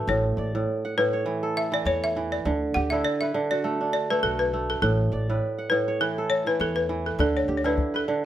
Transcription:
0.00 0.13 D3 medium
0.00 1.78 A3 medium
0.00 0.95 F#4 medium
0.07 0.34 A1 loud
0.07 0.54 A2 medium
0.07 0.64 C#5 medium
0.37 0.64 A1 medium
0.37 1.19 D5 medium
0.55 0.96 A2 medium
0.85 1.81 F#5 medium
0.98 2.50 A2 medium
0.98 1.58 B4 medium
1.13 1.85 C#5 medium
1.26 1.71 E3 medium
1.43 2.75 A4 medium
1.57 1.73 E5 loud
1.72 2.15 E3 medium
1.72 1.79 D5 medium
1.85 2.38 E2 loud
1.85 2.51 C#5 medium
1.85 2.03 C#5 loud
2.04 2.33 E5 medium
2.16 2.50 E3 medium
2.32 2.59 D5 medium
2.45 2.72 D2 medium
2.45 2.91 D3 medium
2.74 3.01 D2 medium
2.74 3.57 G4 medium
2.74 2.91 F#5 loud
2.90 3.33 D3 medium
2.90 4.49 E4 medium
2.90 3.04 E5 medium
3.05 3.20 D5 loud
3.21 4.45 B4 medium
3.21 3.51 E5 medium
3.34 4.87 D3 medium
3.51 4.23 F#4 medium
3.51 3.78 D5 medium
3.64 4.10 A3 medium
3.81 5.49 D4 medium
3.93 4.10 D5 loud
4.10 4.53 A3 medium
4.10 4.24 B4 medium
4.23 4.76 B1 medium
4.23 5.70 F#4 medium
4.23 4.40 A4 medium
4.39 4.70 B4 medium
4.53 6.53 A3 medium
4.70 4.81 A4 medium
4.82 5.08 A1 loud
4.82 5.28 A2 medium
4.82 5.74 A4 medium
5.12 5.38 A1 medium
5.12 5.94 D5 medium
5.30 5.70 A2 medium
5.30 6.53 B4 medium
5.58 6.55 F#5 medium
5.70 7.24 A2 medium
5.70 5.83 B4 medium
5.88 6.59 C#5 medium
6.01 6.45 E3 medium
6.01 6.31 A4 medium
6.18 7.50 A4 medium
6.30 6.46 C#5 loud
6.46 6.88 E3 medium
6.46 6.60 B4 medium
6.60 7.12 E2 medium
6.60 6.77 A4 medium
6.60 7.25 C#5 medium
6.76 7.06 B4 medium
6.89 7.24 E3 medium
7.06 7.19 A4 medium
7.19 7.45 D2 loud
7.19 7.64 D3 medium
7.19 7.27 A4 medium
7.19 calabash thump medium
7.37 7.56 C#5 medium
7.48 7.74 D2 medium
7.48 8.25 G4 medium
7.57 7.65 C#5 medium
7.64 8.07 D3 medium
7.64 8.25 E4 medium
7.64 7.96 B4 medium
7.64 calabash click soft
7.78 calabash thump medium
7.94 8.25 A4 medium
7.94 8.25 B4 medium
8.08 8.25 D3 medium

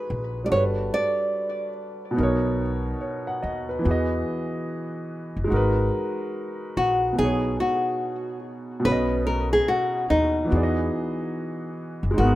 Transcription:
0.00 0.44 G#3 medium
0.00 0.46 D#4 medium
0.00 0.47 F#4 medium
0.00 0.49 G#4 medium
0.00 0.45 B4 medium
0.00 0.50 B4 medium
0.10 0.47 A#1 medium
0.44 2.11 G3 medium
0.44 2.12 D4 medium
0.44 0.51 D5 medium
0.50 0.88 G1 medium
0.50 2.14 F#4 medium
0.50 2.15 A4 medium
0.50 0.63 C#5 medium
0.56 2.17 B4 medium
0.94 1.72 D5 medium
2.11 3.77 B2 medium
2.11 3.79 B3 medium
2.17 2.92 B1 medium
2.17 3.80 D#4 medium
2.17 2.60 A#4 medium
2.23 2.61 C#5 medium
3.01 3.25 C#5 medium
3.27 3.42 F#5 medium
3.42 3.80 D#2 medium
3.42 3.67 D#5 medium
3.69 4.08 B4 medium
3.79 5.45 E3 medium
3.79 5.46 B3 medium
3.85 4.22 E2 loud
3.85 5.48 F#4 medium
3.85 5.49 G#4 medium
3.91 5.51 D#5 medium
5.37 5.50 F#1 medium
5.44 7.11 G#3 medium
5.44 7.12 D#4 medium
5.50 5.88 G#1 medium
5.50 7.14 F#4 medium
5.50 7.15 A#4 medium
5.56 7.17 B4 medium
6.77 7.13 A#1 medium
6.77 7.18 F#4 medium
7.13 8.78 B2 medium
7.13 8.80 B3 medium
7.18 7.55 B1 medium
7.18 8.81 D#4 medium
7.18 7.60 G#4 loud
7.18 8.83 G#4 medium
7.24 8.84 C#5 medium
7.60 8.39 F#4 medium
8.80 10.45 B2 medium
8.80 10.46 B3 medium
8.85 9.58 B1 loud
8.85 10.48 C#4 medium
8.85 9.26 B4 loud
8.85 10.50 B4 medium
8.92 10.51 D#5 medium
9.27 9.52 A#4 medium
9.53 9.68 G#4 medium
9.68 10.10 F#4 medium
10.10 10.47 D#2 medium
10.10 11.72 D#4 medium
10.45 12.11 E3 medium
10.45 12.13 B3 medium
10.51 10.88 E2 loud
10.51 12.14 F#4 medium
10.51 12.16 G#4 medium
10.57 10.62 D5 medium
10.63 12.20 D#5 medium
12.03 12.16 F#1 medium
12.11 12.35 G#3 medium
12.11 12.35 D#4 medium
12.17 12.35 G#1 loud
12.17 12.35 F#4 medium
12.17 12.35 A#4 medium
12.23 12.35 B3 medium

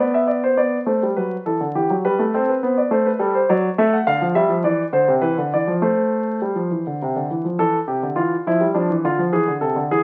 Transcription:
0.00 0.56 B3 medium
0.00 0.14 D5 medium
0.14 0.29 E5 medium
0.27 0.43 D5 medium
0.44 0.58 C5 medium
0.57 0.76 B3 medium
0.57 0.76 D5 medium
0.86 1.01 A3 medium
0.86 1.05 C5 medium
1.03 1.17 G3 medium
1.17 1.35 F#3 medium
1.17 1.35 B4 medium
1.46 1.60 E3 medium
1.46 1.64 A4 medium
1.61 1.75 D3 medium
1.75 1.89 E3 medium
1.75 1.93 G4 medium
1.90 2.04 F#3 medium
2.05 2.19 G3 medium
2.05 2.23 B4 medium
2.19 2.33 A3 medium
2.34 2.52 C4 medium
2.34 2.48 A4 medium
2.49 2.62 B4 medium
2.63 2.81 B3 medium
2.63 2.77 C5 medium
2.78 2.91 D5 medium
2.91 3.09 A3 medium
2.91 3.05 C5 medium
3.06 3.20 B4 medium
3.19 3.38 G3 medium
3.19 3.34 A4 medium
3.35 3.49 C5 medium
3.49 3.67 F#3 medium
3.49 3.67 D5 medium
3.78 3.96 A3 medium
3.78 3.92 E5 medium
3.93 4.07 F#5 medium
4.07 4.21 D3 medium
4.07 4.24 F5 medium
4.22 4.35 F3 medium
4.35 4.49 G3 medium
4.35 4.53 E5 medium
4.49 4.63 F3 medium
4.64 4.82 E3 medium
4.64 4.82 D5 medium
4.93 5.07 D3 medium
4.93 5.11 C5 medium
5.08 5.22 C3 medium
5.22 5.36 E3 medium
5.22 5.40 B4 medium
5.38 5.51 D3 medium
5.54 5.67 E3 medium
5.54 5.71 D5 medium
5.67 5.81 F3 medium
5.82 6.39 A3 medium
5.82 7.26 C5 medium
6.42 6.55 G3 medium
6.55 6.69 F3 medium
6.71 6.85 E3 medium
6.87 7.00 D3 medium
7.02 7.15 C3 medium
7.16 7.29 D3 medium
7.31 7.44 E3 medium
7.45 7.58 F3 medium
7.59 7.77 E3 medium
7.59 7.77 A4 medium
7.88 8.02 C3 medium
7.88 8.06 G4 medium
8.03 8.17 D3 medium
8.16 8.34 E3 medium
8.16 8.34 F4 medium
8.47 8.60 F3 medium
8.47 8.65 E4 medium
8.61 8.74 G3 medium
8.74 8.89 F3 medium
8.74 8.93 D4 medium
8.90 9.04 E3 medium
9.05 9.18 D3 medium
9.05 9.22 F4 medium
9.18 9.32 F3 medium
9.32 9.47 E3 medium
9.32 9.51 G#4 medium
9.48 9.62 D3 medium
9.61 9.75 C3 medium
9.61 9.79 A4 medium
9.76 9.90 D3 medium
9.91 10.03 E3 medium
9.91 10.03 G#4 medium

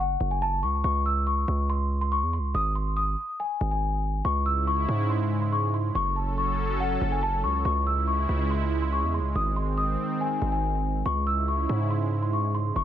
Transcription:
0.00 0.17 F#1 loud
0.00 0.29 F#5 medium
0.20 0.65 F#1 loud
0.31 0.39 G#5 medium
0.42 0.58 A5 loud
0.63 0.83 C#2 loud
0.63 0.80 C#6 medium
0.84 1.46 C#2 loud
0.84 1.01 C#6 loud
1.06 1.22 E6 medium
1.27 1.67 C#6 medium
1.48 2.24 C#2 loud
1.70 2.00 C6 medium
2.01 2.10 C6 medium
2.12 2.28 C#6 medium
2.23 2.40 E2 loud
2.33 2.50 C6 medium
2.39 2.54 C#2 loud
2.55 3.16 G#1 loud
2.55 2.71 D#6 loud
2.75 2.92 C6 medium
2.97 3.37 D#6 medium
3.40 3.70 G#5 medium
3.61 4.22 G#1 loud
3.71 4.21 G#5 medium
4.25 4.86 C#2 loud
4.25 5.93 C#3 medium
4.25 5.93 G#3 medium
4.25 5.93 E4 medium
4.25 4.41 C#6 loud
4.46 4.63 E6 medium
4.67 5.07 C#6 medium
4.89 5.91 G#2 loud
5.10 5.40 C6 medium
5.42 5.50 C6 medium
5.52 5.69 C#6 medium
5.74 5.90 C6 medium
5.95 6.97 F#1 loud
5.95 7.64 F#3 medium
5.95 7.64 C#4 medium
5.95 7.63 A4 medium
5.95 6.12 C#6 loud
6.16 6.33 A5 medium
6.38 6.78 C#6 medium
6.80 7.10 F#5 medium
7.01 7.45 F#1 loud
7.12 7.20 G#5 medium
7.23 7.39 A5 loud
7.44 7.64 C#2 loud
7.44 7.60 C#6 medium
7.65 8.26 C#2 loud
7.65 9.34 C#3 medium
7.65 11.02 G#3 medium
7.65 9.34 E4 medium
7.65 7.82 C#6 loud
7.87 8.03 E6 medium
8.07 8.48 C#6 medium
8.29 9.05 C#2 loud
8.50 8.80 C6 medium
8.82 8.91 C6 medium
8.93 9.09 C#6 medium
9.03 9.21 E2 loud
9.14 9.31 C6 medium
9.19 9.35 C#2 loud
9.35 9.97 G#1 loud
9.35 11.04 D#3 medium
9.35 11.04 C4 medium
9.35 9.52 D#6 medium
9.56 9.73 C6 medium
9.78 10.18 D#6 medium
10.21 10.51 G#5 loud
10.42 11.03 G#1 loud
10.52 11.02 G#5 medium
11.06 11.67 C#2 loud
11.06 12.74 C#3 medium
11.06 12.74 G#3 medium
11.06 12.74 E4 medium
11.06 11.22 C#6 loud
11.27 11.43 E6 medium
11.48 11.88 C#6 medium
11.69 12.72 G#2 loud
11.90 12.21 C6 medium
12.23 12.31 C6 medium
12.33 12.50 C#6 medium
12.55 12.71 C6 medium
12.76 12.84 F#1 loud
12.76 12.84 F#3 medium
12.76 12.84 C#4 medium
12.76 12.84 A4 medium
12.76 12.84 C#6 loud

